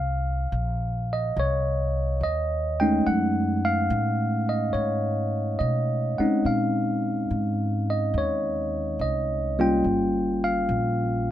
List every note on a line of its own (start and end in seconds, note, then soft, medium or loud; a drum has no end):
0.00 0.50 C2 medium
0.00 0.51 F5 medium
0.52 1.34 A#1 medium
1.13 1.36 D#5 medium
1.36 2.19 C2 medium
1.36 2.25 C#5 medium
2.21 3.03 D#2 medium
2.21 2.77 D#5 medium
2.80 3.86 G#3 medium
2.80 3.86 A3 soft
2.80 3.86 C#4 medium
2.80 3.86 D#4 medium
2.80 3.04 G5 medium
3.07 3.89 F#2 medium
3.07 3.67 F#5 medium
3.65 4.52 F5 medium
3.90 4.73 A2 medium
4.49 4.76 D#5 medium
4.73 5.57 G#2 medium
4.73 5.62 C#5 medium
5.59 6.15 B2 medium
5.59 6.20 D#5 medium
6.18 7.26 G#3 medium
6.18 7.25 C4 soft
6.18 7.26 C#4 soft
6.18 7.26 D#4 medium
6.18 6.46 F#5 medium
6.18 muted upright bass stroke soft
6.45 7.28 A#2 medium
6.45 7.27 F5 medium
7.30 8.13 G#2 medium
7.90 8.17 D#5 medium
8.14 8.97 D#2 medium
8.18 8.97 C#5 medium
8.99 9.81 C2 medium
8.99 9.55 D#5 medium
9.59 10.64 G3 medium
9.59 10.63 A#3 medium
9.59 10.64 C#4 medium
9.59 10.64 F4 medium
9.59 10.46 G5 medium
9.84 10.66 G1 medium
10.44 11.23 F5 medium
10.69 11.31 A#1 medium